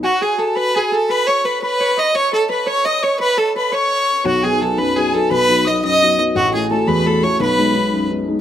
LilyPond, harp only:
\new Staff \with { instrumentName = "Harp" } { \time 6/8 \key b \mixolydian \tempo 4. = 114 fis'8 gis'8 a'8 b'8 gis'8 a'8 | b'8 cis''8 b'8 b'8 cis''8 dis''8 | cis''8 a'8 b'8 cis''8 dis''8 cis''8 | b'8 a'8 b'8 cis''4. |
fis'8 gis'8 a'8 b'8 gis'8 a'8 | b'4 dis''8 dis''4 r8 | fis'8 gis'8 a'8 b'8 a'8 cis''8 | b'2 r4 | }